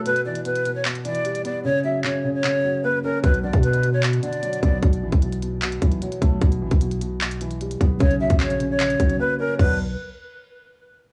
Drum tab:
CC |----------------|----------------|----------------|----------------|
HH |xx-xxxx-xxxxxxx-|----------------|xx-xxxx-xxxxxxx-|xx-xxxx-xxxxxxx-|
CP |--------x-------|----x---x-------|--------x-------|--------x-------|
FT |----------------|----------------|----------------|----------------|
BD |----------------|----------------|o--o----------o-|o--o------o---o-|

CC |----------------|----------------|x---------------|
HH |xx-xxxx-xxxxxxx-|xx-xxxx-xxxx----|----------------|
CP |--------x-------|----x---x-------|----------------|
FT |----------------|----------------|o---------------|
BD |o--o----------o-|o--o------o-----|o---------------|